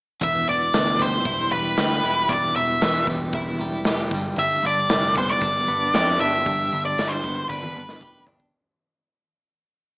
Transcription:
0.21 picked electric bass E1, clean electric guitar E2, lead electric guitar E5, kick, open hi-hat
0.48 picked electric bass E1, clean electric guitar B2, lead electric guitar D5, open hi-hat
0.73 picked electric bass D2, clean electric guitar E3, snare, open hi-hat
1.00 clean electric guitar G3, lead electric guitar C5, kick, open hi-hat
1.25 picked electric bass E1, clean electric guitar E4, kick, open hi-hat
1.51 picked electric bass E1, clean electric guitar G3, lead electric guitar B4, open hi-hat
1.77 picked electric bass D2, clean electric guitar G4, snare, open hi-hat
2.03 picked electric bass E1, clean electric guitar E4, open hi-hat
2.29 picked electric bass E1, clean electric guitar E2, lead electric guitar D5, kick, open hi-hat
2.55 picked electric bass E1, clean electric guitar B2, lead electric guitar E5, open hi-hat
2.81 picked electric bass E1, clean electric guitar E3, snare, open hi-hat
3.07 picked electric bass E1, clean electric guitar G3, kick, open hi-hat
3.33 picked electric bass E1, clean electric guitar E4, kick, open hi-hat
3.59 picked electric bass E1, clean electric guitar G3, open hi-hat
3.84 picked electric bass F1, clean electric guitar G4, snare, open hi-hat
4.11 picked electric bass G1, clean electric guitar G2, kick, open hi-hat
4.36 picked electric bass G1, clean electric guitar G2, lead electric guitar E5, open hi-hat
4.63 picked electric bass G1, clean electric guitar D3, lead electric guitar D5, open hi-hat
4.89 picked electric bass F1, clean electric guitar G3, snare, open hi-hat
5.15 clean electric guitar B3, lead electric guitar C5, kick, open hi-hat
5.30 lead electric guitar D5
5.41 picked electric bass G1, clean electric guitar D4, kick, open hi-hat
5.68 picked electric bass G1, clean electric guitar B3, open hi-hat
5.94 picked electric bass F2, clean electric guitar G4, lead electric guitar D5, snare, open hi-hat
6.20 picked electric bass G1, clean electric guitar D4, lead electric guitar E5, open hi-hat
6.46 picked electric bass G1, clean electric guitar G2, kick, open hi-hat
6.72 picked electric bass G1, clean electric guitar D3, open hi-hat
6.85 lead electric guitar D5
6.98 picked electric bass G1, clean electric guitar G3, snare, open hi-hat
7.09 lead electric guitar C5
7.24 picked electric bass G1, clean electric guitar B3, kick, open hi-hat
7.49 picked electric bass G1, clean electric guitar D4, lead electric guitar B4, kick
7.63 high tom
7.77 picked electric bass G1, clean electric guitar B3
7.89 snare
8.01 picked electric bass F1, clean electric guitar G4, kick
8.27 picked electric bass G1, clean electric guitar D4, floor tom
8.40 kick

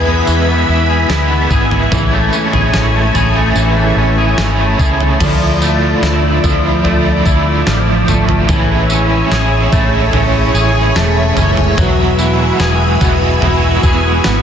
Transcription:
Already playing: fingered electric bass E2, clean electric guitar E3 E4 G#4, overdriven electric guitar E3 G#3 B3 E4, string machine B4 E5 G#5 B5
0.06 clean electric guitar B3
0.27 fingered electric bass E2, clean electric guitar E3, tambourine
0.48 clean electric guitar B3
0.69 fingered electric bass E2, clean electric guitar E4
0.90 clean electric guitar G#4
1.08 fingered electric bass D2, overdriven electric guitar E3 G#3 B3, clean electric guitar E4, snare, tambourine
1.14 overdriven electric guitar E4
1.31 clean electric guitar B3
1.50 fingered electric bass G#1, clean electric guitar G#4, kick, tambourine
1.71 clean electric guitar B3, floor tom
1.90 fingered electric bass A1, overdriven electric guitar A2 E3 G#3 C#4, clean electric guitar E3, string machine C#5, kick, floor tom, tambourine
1.95 overdriven electric guitar E4
2.13 clean electric guitar A3
2.33 clean electric guitar C#4, tambourine
2.53 fingered electric bass A1, clean electric guitar G#4, floor tom
2.74 fingered electric bass A1, clean electric guitar C#4, snare, tambourine
2.94 clean electric guitar A3
3.13 fingered electric bass A1, overdriven electric guitar C#4 E4, clean electric guitar G#4, floor tom, tambourine
3.19 overdriven electric guitar G#3
3.36 clean electric guitar A3
3.55 fingered electric bass A1, clean electric guitar E3, tambourine
3.77 clean electric guitar A3
3.96 fingered electric bass A1, clean electric guitar C#4
4.18 clean electric guitar G#4
4.36 fingered electric bass G#1, overdriven electric guitar E3 G#3, clean electric guitar C#4, snare, tambourine
4.40 overdriven electric guitar C#4 E4
4.59 clean electric guitar A3
4.79 fingered electric bass C#2, clean electric guitar G#4, kick, tambourine
5.00 clean electric guitar A3, floor tom
5.19 fingered electric bass D2, overdriven electric guitar D3 F3 A3 D4, clean electric guitar F3, string machine F3 D5 E5, kick, floor tom, crash, tambourine
5.23 overdriven electric guitar E4
5.61 clean electric guitar A3, tambourine
6.02 fingered electric bass D2, clean electric guitar E4, snare, tambourine
6.42 fingered electric bass D2, clean electric guitar F3, overdriven electric guitar D4 E4, kick, floor tom, tambourine
6.48 overdriven electric guitar A3
6.82 fingered electric bass D2, overdriven electric guitar D3 F3, clean electric guitar A3, floor tom
6.87 overdriven electric guitar A3 D4
6.91 overdriven electric guitar E4
7.26 fingered electric bass D2, clean electric guitar E4, kick, tambourine
7.67 fingered electric bass A1, clean electric guitar F3, snare, tambourine
8.08 fingered electric bass G#1, clean electric guitar A3, floor tom, tambourine
8.29 floor tom
8.48 fingered electric bass A1, overdriven electric guitar A2 E3 G#3 C#4, clean electric guitar E3, string machine C#5, kick, floor tom, tambourine
8.52 overdriven electric guitar E4, string machine G#4
8.90 clean electric guitar C#4, tambourine
9.30 fingered electric bass A1, overdriven electric guitar E3 G#3, clean electric guitar G#4, snare, tambourine
9.34 overdriven electric guitar C#4 E4
9.71 fingered electric bass A1, clean electric guitar A3, overdriven electric guitar C#4 E4, kick, floor tom, tambourine
9.77 overdriven electric guitar G#3
10.11 fingered electric bass A1, overdriven electric guitar A2 E3, clean electric guitar C#4, floor tom
10.16 overdriven electric guitar G#3 C#4
10.20 overdriven electric guitar E4
10.54 fingered electric bass A1, clean electric guitar G#4, tambourine
10.95 fingered electric bass E1, clean electric guitar A3, snare, tambourine
11.36 fingered electric bass F#1, clean electric guitar C#4, floor tom, tambourine
11.57 floor tom
11.77 fingered electric bass E1, overdriven electric guitar E2 B2 E3 G#3 B3, clean electric guitar F#3, string machine F#4 B4 G#5, kick, floor tom, tambourine
11.81 overdriven electric guitar F#4
12.19 clean electric guitar E4, tambourine
12.60 fingered electric bass E1, clean electric guitar G#4, snare, tambourine
12.99 fingered electric bass E1, clean electric guitar B3, overdriven electric guitar B3 F#4, kick, floor tom, tambourine
13.03 overdriven electric guitar E3 G#3
13.40 fingered electric bass E1, overdriven electric guitar E2 B2, clean electric guitar E4, floor tom
13.44 overdriven electric guitar E3 G#3 B3
13.49 overdriven electric guitar F#4
13.83 fingered electric bass E1, clean electric guitar G#4, kick, tambourine
14.24 fingered electric bass G#1, clean electric guitar B3, snare, tambourine

